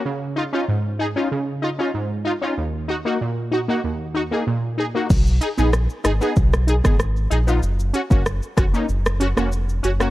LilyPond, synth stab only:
\new Staff \with { instrumentName = "Synth stab" } { \time 4/4 \key b \lydian \tempo 4 = 95 << { r8 <dis' eis'>16 <cis' dis' eis'>16 r8 <dis' gis'>16 <cis' dis' eis'>16 r8 <dis' eis'>16 <cis' dis' eis'>16 r8 <dis' eis'>16 <cis' dis' eis'>16 | r8 <dis' fis'>16 <ais dis' fis'>16 r8 <dis' fis'>16 <ais dis' fis'>16 r8 <dis' fis'>16 <ais dis' gis'>16 r8 <dis' gis'>16 <ais dis' fis'>16 | r8 <dis' gis'>16 <b dis' gis'>16 r8 <dis' gis'>16 <b dis' gis'>16 r8 <dis' gis'>16 <b dis' gis'>16 r8 <dis' gis'>16 <b dis' eis'>16 | r8 <cis' fis'>16 <ais cis' fis'>16 r8 <cis' fis'>16 <ais cis' dis'>16 r8 <cis' fis'>16 <ais cis' fis'>16 r8 <cis' fis'>16 <ais cis' fis'>16 | } \\ { cis4 gis,4 cis4 gis,4 | dis,4 ais,4 dis,4 ais,4 | r1 | r1 | } >> }